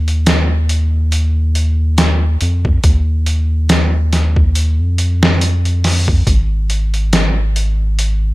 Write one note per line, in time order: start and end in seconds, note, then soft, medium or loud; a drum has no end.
0.00 2.37 D#2 loud
0.08 closed hi-hat soft
0.26 snare loud
0.26 closed hi-hat medium
0.69 closed hi-hat medium
1.12 closed hi-hat medium
1.55 closed hi-hat medium
1.98 snare loud
1.98 closed hi-hat medium
2.41 2.79 F2 medium
2.41 closed hi-hat medium
2.65 kick medium
2.84 4.81 D#2 loud
2.84 kick loud
2.84 closed hi-hat medium
3.26 closed hi-hat medium
3.69 snare loud
3.69 closed hi-hat medium
4.13 snare soft
4.13 closed hi-hat medium
4.36 kick medium
4.55 closed hi-hat medium
4.79 6.23 F2 loud
4.98 closed hi-hat medium
5.23 snare loud
5.41 closed hi-hat medium
5.65 closed hi-hat soft
5.84 snare soft
5.84 open hi-hat medium
6.08 kick medium
6.27 8.34 G#1 loud
6.27 kick loud
6.27 closed hi-hat medium
6.70 closed hi-hat medium
6.94 closed hi-hat soft
7.13 snare loud
7.13 closed hi-hat medium
7.56 closed hi-hat medium
7.99 closed hi-hat medium